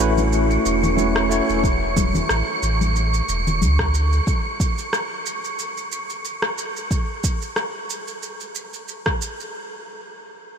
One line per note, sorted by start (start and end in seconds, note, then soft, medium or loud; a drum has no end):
0.00 0.58 A1 medium
0.00 0.96 A3 medium
0.00 0.97 C#4 medium
0.00 0.98 E4 medium
0.00 0.98 F#4 medium
0.00 0.02 B4 medium
0.00 0.96 B4 loud
0.00 6.92 C#6 medium
0.00 shaker medium
0.18 high conga medium
0.18 shaker soft
0.33 shaker soft
0.51 shaker soft
0.66 1.41 E1 loud
0.66 shaker medium
0.83 low conga medium
0.83 shaker soft
0.96 1.26 A3 medium
0.96 1.26 C#4 medium
0.96 1.27 E4 medium
0.96 1.27 F#4 medium
0.96 1.28 C#5 medium
0.96 high conga medium
0.96 shaker soft
1.16 cross-stick medium
1.29 1.59 A3 medium
1.29 1.60 C#4 medium
1.29 1.60 E4 medium
1.29 1.60 F#4 medium
1.29 1.61 C#5 medium
1.29 shaker medium
1.49 2.23 E1 medium
1.49 shaker soft
1.64 kick loud
1.64 shaker soft
1.97 kick loud
1.97 high conga medium
1.97 shaker medium
2.15 low conga medium
2.15 shaker soft
2.29 2.42 A1 medium
2.29 cross-stick medium
2.29 shaker soft
2.63 3.21 A1 medium
2.63 shaker medium
2.81 high conga medium
2.81 shaker soft
2.96 shaker soft
3.14 shaker soft
3.29 3.63 E1 loud
3.29 shaker medium
3.47 low conga medium
3.47 shaker soft
3.62 4.20 D2 loud
3.62 high conga medium
3.62 shaker soft
3.79 kick loud
3.79 cross-stick medium
3.94 shaker medium
4.13 shaker soft
4.27 kick loud
4.27 shaker soft
4.60 kick loud
4.60 shaker medium
4.78 shaker soft
4.93 cross-stick medium
4.93 shaker soft
5.26 shaker medium
5.44 shaker soft
5.59 shaker soft
5.77 shaker soft
5.92 shaker medium
6.10 shaker soft
6.25 shaker soft
6.42 cross-stick medium
6.58 shaker medium
6.76 shaker soft
6.91 kick loud
6.91 shaker soft
7.24 kick loud
7.24 shaker medium
7.42 shaker soft
7.56 cross-stick medium
7.56 shaker soft
7.90 shaker medium
8.08 shaker soft
8.23 shaker soft
8.40 shaker soft
8.55 shaker medium
8.74 shaker soft
8.88 shaker soft
9.06 kick medium
9.06 cross-stick medium
9.22 shaker medium
9.40 shaker soft